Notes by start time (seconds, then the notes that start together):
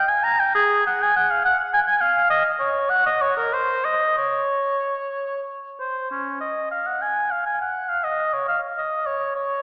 Already playing: G5
0.09 G#5
0.24 A#5
0.39 G5
0.55 G#4
0.87 F#5
1.02 G#5
1.16 F#5
1.31 F5
1.45 F#5
1.73 G#5
1.87 G#5
2.01 F5
2.30 D#5
2.60 C#5
2.89 F#5
3.06 D#5
3.21 C#5
3.37 A#4
3.53 C5
3.85 D#5
4.18 C#5
5.79 C5
6.11 C#4
6.40 D#5
6.71 F5
6.87 F#5
7.02 G#5
7.31 F5
7.46 G#5
7.61 F#5
7.89 F5
8.04 D#5
8.33 C#5
8.48 F5
8.78 D#5
9.06 C#5
9.35 C#5